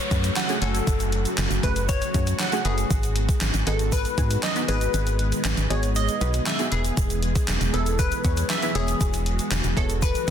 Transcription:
Already playing: C#3 F#3 A3 F#4 C#5, downlifter
0.11 F#2 A3 C#4 F#4 B4, kick, closed hi-hat, shaker
0.24 closed hi-hat, shaker
0.36 F#5, snare, clap, closed hi-hat, shaker
0.49 A3 C#4 F#4 G#4, closed hi-hat, shaker
0.62 F#1 A3 C#4 F#4 A4 G#5, closed hi-hat
0.75 closed hi-hat, shaker
0.87 F#1, kick, closed hi-hat, shaker
1.00 closed hi-hat, shaker
1.12 closed hi-hat
1.25 closed hi-hat, shaker
1.38 F#1, snare, clap, closed hi-hat, shaker
1.51 F#1, closed hi-hat, shaker
1.63 F#1 A3 C#4 F#4 G#4 B4, kick, closed hi-hat
1.76 closed hi-hat, shaker
1.89 C#5, kick, closed hi-hat, shaker
2.02 closed hi-hat, shaker
2.14 F#2 A3 C#4 F#4 G#4, kick, closed hi-hat, shaker
2.27 closed hi-hat, shaker
2.39 F#5, snare, clap, closed hi-hat, shaker
2.52 A3 C#4 F#4 G#4, closed hi-hat, shaker
2.65 F#1 A3 C#4 F#4 G#4 B4, closed hi-hat
2.78 closed hi-hat, shaker
2.90 G#1 D#3 G#3 B3, kick, closed hi-hat, shaker
3.03 closed hi-hat, shaker
3.16 closed hi-hat
3.29 kick, closed hi-hat, shaker
3.41 G#1, snare, clap, closed hi-hat, shaker
3.54 G#1, closed hi-hat, shaker
3.67 G#1 B3 D#4 F#4 G#4 A4, closed hi-hat
3.79 closed hi-hat, shaker
3.92 B4, kick, closed hi-hat, shaker
4.05 closed hi-hat, shaker
4.18 G#2 B3 D#4 F#4 G#4, kick, closed hi-hat, shaker
4.30 closed hi-hat, shaker
4.43 D#5, snare, clap, closed hi-hat, shaker
4.56 B3 D#4 F#4 B4, closed hi-hat, shaker
4.68 G#1 B3 D#4 F#4 G#4 B4, closed hi-hat
4.81 closed hi-hat, shaker
4.94 G#1 G#4, closed hi-hat, shaker
5.07 closed hi-hat, shaker
5.19 closed hi-hat
5.32 closed hi-hat, shaker
5.45 G#1, snare, clap, closed hi-hat, shaker
5.57 G#1, closed hi-hat, shaker
5.70 G#1 B3 D#4 F#4 G#4 C#5, closed hi-hat
5.83 closed hi-hat, shaker
5.95 D#5, closed hi-hat, shaker
6.08 closed hi-hat, shaker
6.21 B1 B3 D#4 F#4 B4, closed hi-hat, shaker
6.34 closed hi-hat, shaker
6.46 E5, snare, clap, closed hi-hat, shaker
6.59 B3 D#4 F#4 G#4, closed hi-hat, shaker
6.72 E1 E3 G#3 B3 E4 G#4 B4, closed hi-hat
6.85 closed hi-hat, shaker
6.97 E1, kick, closed hi-hat, shaker
7.10 closed hi-hat, shaker
7.22 closed hi-hat
7.35 kick, closed hi-hat, shaker
7.48 E1, snare, clap, closed hi-hat, shaker
7.61 E1, closed hi-hat, shaker
7.73 E1 B3 E4 G#4 A4 B4, closed hi-hat
7.86 closed hi-hat, shaker
7.99 B4, kick, closed hi-hat, shaker
8.12 closed hi-hat, shaker
8.24 E2 B3 E4 G#4 C#5, kick, closed hi-hat, shaker
8.37 closed hi-hat, shaker
8.50 E5, snare, clap, closed hi-hat, shaker
8.62 B3 E4 G#4 B4, closed hi-hat, shaker
8.75 E1 B3 E4 F#4 G#4 C#5, closed hi-hat
8.88 closed hi-hat, shaker
9.01 E1, kick, closed hi-hat, shaker
9.13 closed hi-hat, shaker
9.26 closed hi-hat
9.39 closed hi-hat, shaker
9.51 E1, snare, clap, closed hi-hat, shaker
9.64 E1, closed hi-hat, shaker
9.77 E1 B3 E4 G#4 A4 C#5, kick, closed hi-hat
9.89 closed hi-hat, shaker
10.02 B4, kick, closed hi-hat, shaker
10.15 closed hi-hat, shaker
10.27 shaker

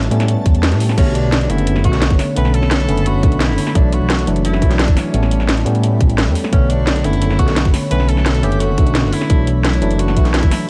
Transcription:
Already playing: G3 A3 B3 C#4 G4 B4 C#5 A5
0.03 closed hi-hat
0.11 A2 G3 A3 B3 C#4, closed hi-hat
0.20 snare, closed hi-hat
0.28 closed hi-hat
0.46 E2, kick, closed hi-hat
0.55 closed hi-hat
0.63 snare, closed hi-hat
0.72 A2, snare, closed hi-hat
0.80 open hi-hat
0.89 snare
0.97 B1 D3 A3 B3 C#4 A4 C#5 B5, kick, closed hi-hat, crash
1.15 D4, closed hi-hat
1.24 B1
1.32 snare, closed hi-hat
1.41 closed hi-hat
1.49 F#1 D3 A3 B3 C#4 E4, closed hi-hat
1.58 closed hi-hat
1.67 closed hi-hat
1.76 snare
1.84 B1 D3 A3 B3 D4 F#4, kick, closed hi-hat
1.93 snare, closed hi-hat
2.02 snare, closed hi-hat
2.10 F#1, kick
2.19 snare, open hi-hat
2.35 B1 D3 A3 B3 C#4 B4, closed hi-hat
2.45 snare
2.54 A4, closed hi-hat
2.63 B1, snare
2.71 snare, closed hi-hat
2.80 closed hi-hat
2.88 F#1 D3 A3 B3 C#4, closed hi-hat
2.97 closed hi-hat
3.06 F#4, closed hi-hat
3.23 B1 D3 A3 B3 D4, kick, closed hi-hat
3.32 closed hi-hat
3.40 E4, snare, closed hi-hat
3.49 F#1
3.58 open hi-hat
3.67 snare
3.74 B1 E3 F#3 A3 D4 F#4 D5 E5 A5, kick, closed hi-hat
3.92 F#4, closed hi-hat
4.01 B1
4.10 snare, closed hi-hat
4.19 closed hi-hat
4.27 F#1 E3 F#3 A3 D4, closed hi-hat
4.36 closed hi-hat
4.45 E4, closed hi-hat
4.53 snare
4.61 B1 E3 F#3 A3 E4, kick, closed hi-hat
4.71 snare, closed hi-hat
4.79 D4, snare, closed hi-hat
4.88 F#1, kick
4.97 C#4, snare, open hi-hat
5.13 A1 G3 A3 B3 C#4 A4 C#5 G5 B5, closed hi-hat
5.23 snare
5.31 closed hi-hat
5.40 A1, snare
5.49 snare, closed hi-hat
5.57 closed hi-hat
5.65 A2 G3 A3 B3 C#4, closed hi-hat
5.75 closed hi-hat
5.83 closed hi-hat
6.01 A1, kick, closed hi-hat
6.10 closed hi-hat
6.18 snare, closed hi-hat
6.27 E2
6.35 open hi-hat
6.44 snare
6.51 B1 D3 A3 B3 C#4 C#5 B5, kick, closed hi-hat
6.70 D4, closed hi-hat
6.79 B1
6.87 snare, closed hi-hat
6.96 closed hi-hat
7.04 F#1 D3 A3 B3 C#4 E4, closed hi-hat
7.13 closed hi-hat
7.22 closed hi-hat
7.30 snare
7.39 B1 D3 A3 B3 D4 F#4, kick, closed hi-hat
7.48 snare, closed hi-hat
7.56 snare, closed hi-hat
7.65 F#1, kick
7.74 snare, open hi-hat
7.90 B1 D3 A3 B3 C#4 B4, closed hi-hat
8.00 snare
8.09 A4, closed hi-hat
8.17 B1, snare
8.26 snare, closed hi-hat
8.35 closed hi-hat
8.43 F#1 D3 A3 B3 C#4 G4, closed hi-hat
8.52 closed hi-hat
8.60 F#4, closed hi-hat
8.77 B1 D3 A3 B3 D4, kick, closed hi-hat
8.87 closed hi-hat
8.95 snare, closed hi-hat
9.04 F#1
9.13 E4, open hi-hat
9.21 snare
9.29 B1 E3 F#3 A3 D4 F#4 E5 A5, kick, closed hi-hat
9.47 closed hi-hat
9.56 B1
9.65 E4, snare, closed hi-hat
9.73 closed hi-hat
9.81 F#1 E3 F#3 A3 D4, closed hi-hat
9.91 closed hi-hat
9.99 F#4, closed hi-hat
10.08 snare
10.17 B1 E3 F#3 A3 E4, kick, closed hi-hat
10.25 snare, closed hi-hat
10.34 E4, snare, closed hi-hat
10.43 F#1, kick
10.51 snare, open hi-hat

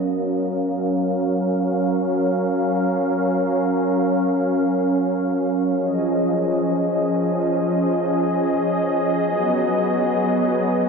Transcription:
Already playing: F#3 C#4 A#4 F5
5.77 F3 G#4 D#5
9.25 F#3 B3

